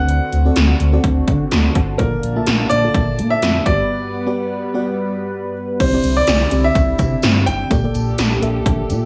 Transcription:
Already playing: analog synth bass D2, fm electric piano D3 C4 F#4 A4 D5, analog synth pad D3 C4 F#4, grand piano F#5
0.09 closed hi-hat
0.32 analog synth bass D2, closed hi-hat
0.45 fm electric piano C4 F#4 A4 D5
0.56 analog synth bass D2, snare, closed hi-hat
0.80 analog synth bass D2, closed hi-hat
0.93 fm electric piano C4 F#4 A4 D5
1.04 analog synth bass D2, kick, closed hi-hat
1.28 analog synth bass D3, kick, closed hi-hat
1.51 analog synth bass D2, fm electric piano A5 C6, snare, closed hi-hat
1.75 analog synth bass G1, fm electric piano F#5 A5, kick, closed hi-hat
1.98 analog synth bass A#1, fm electric piano A#2 A#3 F4 A4 D5, analog synth pad A#3 A5, grand piano A#4, kick, closed hi-hat
2.23 analog synth bass A#1, closed hi-hat
2.36 fm electric piano A#3 F4 E5 A5
2.46 analog synth bass A#1, snare, closed hi-hat
2.70 analog synth bass A#1, grand piano D5, closed hi-hat
2.84 fm electric piano A#3 F4 A4 D5
2.94 analog synth bass A#1, kick, closed hi-hat
3.18 analog synth bass A#2, closed hi-hat
3.30 grand piano E5
3.42 analog synth bass F2, snare, closed hi-hat
3.65 analog synth bass G1, fm electric piano G2 B3 F#4 G4 D5, analog synth pad G3 B3 B4, grand piano D5, kick, closed hi-hat
4.26 fm electric piano B3 F#4 G4 D5
4.74 fm electric piano B3 F#4 G4 D5
5.80 analog synth bass C2, fm electric piano C3 C4 E4 G4 D5, analog synth pad D3 C4 E4, grand piano C5, kick, closed hi-hat, crash, tambourine
5.93 fm electric piano C4 E4 G4 D5
6.04 analog synth bass C2, closed hi-hat, tambourine
6.17 grand piano D5
6.27 analog synth bass C2, snare, closed hi-hat, tambourine
6.51 analog synth bass C2, fm electric piano C4 E4 G4 D5, closed hi-hat, tambourine
6.64 grand piano E5
6.75 analog synth bass C2, kick, closed hi-hat, tambourine
6.98 analog synth bass C3, kick, closed hi-hat, tambourine
7.22 analog synth bass G2, snare, closed hi-hat, tambourine
7.46 analog synth bass G1, grand piano G5, closed hi-hat, tambourine
7.70 analog synth bass A#1, fm electric piano A#2 A#3 G4 A4 D5, analog synth pad A#2 G4 A4, kick, closed hi-hat, tambourine
7.84 fm electric piano A#3 G4 A4 D5
7.94 analog synth bass A#1, closed hi-hat, tambourine
8.18 analog synth bass A#1, snare, closed hi-hat, tambourine
8.42 analog synth bass A#1, fm electric piano A#3 G4 A4 E5, closed hi-hat
8.66 analog synth bass A#1, kick, closed hi-hat
8.90 analog synth bass A#2, closed hi-hat, tambourine

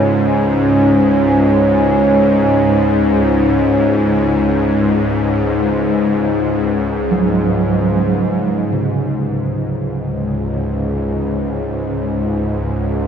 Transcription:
Already playing: synth drone C#2 G#2, analog synth pad G#3 C#4 C#5 G#5
7.11 bronze metallophone F#3
8.67 synth drone C#2 G#2
8.72 bronze metallophone C#3

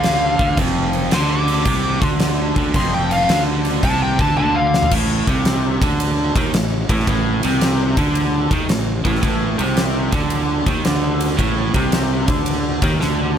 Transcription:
Already playing: fingered electric bass D2, overdriven electric guitar D3, lead electric guitar F5
0.03 snare, crash
0.39 fingered electric bass D2, overdriven electric guitar D3, kick, crash
0.57 fingered electric bass F1, overdriven electric guitar F2, kick, crash
0.93 crash
1.11 fingered electric bass D2, overdriven electric guitar D3, lead electric guitar C6, snare, crash
1.32 lead electric guitar D6
1.48 crash
1.65 fingered electric bass C2, overdriven electric guitar C3, kick, crash
2.01 fingered electric bass D2, overdriven electric guitar D3, lead electric guitar C6, kick, crash
2.19 snare, crash
2.56 fingered electric bass D2, overdriven electric guitar D3, kick, crash
2.74 fingered electric bass F1, overdriven electric guitar F2, lead electric guitar C6, kick, crash
2.94 lead electric guitar G5
3.11 lead electric guitar F5, crash
3.29 fingered electric bass D2, overdriven electric guitar D3, snare, crash
3.65 crash
3.83 fingered electric bass C2, overdriven electric guitar C3, lead electric guitar A5, kick, crash
4.03 lead electric guitar G5
4.19 fingered electric bass D2, overdriven electric guitar D3, lead electric guitar A5, kick, crash
4.37 fingered electric bass D2, overdriven electric guitar D3, lead electric guitar A5, high tom
4.55 lead electric guitar F5
4.74 snare
4.83 floor tom
4.91 fingered electric bass A1, overdriven electric guitar A2, kick, crash
5.27 fingered electric bass C2, overdriven electric guitar C3, kick, ride
5.45 snare, ride
5.82 fingered electric bass D2, overdriven electric guitar D3, kick, ride
6.00 ride
6.35 fingered electric bass D#2, overdriven electric guitar D#3, kick, ride
6.54 fingered electric bass A1, overdriven electric guitar A2, snare, ride
6.89 fingered electric bass A1, overdriven electric guitar A2, kick, ride
7.00 snare
7.07 fingered electric bass A1, overdriven electric guitar A2, kick, ride
7.43 fingered electric bass C2, overdriven electric guitar C3, ride
7.61 snare, ride
7.97 fingered electric bass D2, overdriven electric guitar D3, kick, ride
8.15 ride
8.51 fingered electric bass D#2, overdriven electric guitar D#3, kick, ride
8.69 fingered electric bass A1, overdriven electric guitar A2, snare, ride
9.05 fingered electric bass A1, overdriven electric guitar A2, kick, ride
9.15 snare
9.22 fingered electric bass A1, overdriven electric guitar A2, kick, ride
9.59 fingered electric bass C2, overdriven electric guitar C3, ride
9.77 snare, ride
10.12 fingered electric bass D2, overdriven electric guitar D3, kick, ride
10.30 ride
10.66 fingered electric bass D#2, overdriven electric guitar D#3, kick, ride
10.85 fingered electric bass D2, overdriven electric guitar D3, snare, ride
11.21 ride
11.39 fingered electric bass A1, overdriven electric guitar A2, kick, ride
11.74 fingered electric bass C2, overdriven electric guitar C3, kick, ride
11.92 snare, ride
12.28 fingered electric bass D2, overdriven electric guitar D3, kick, ride
12.46 ride
12.82 fingered electric bass D#2, overdriven electric guitar D#3, kick, ride
13.01 fingered electric bass D2, overdriven electric guitar D3, snare

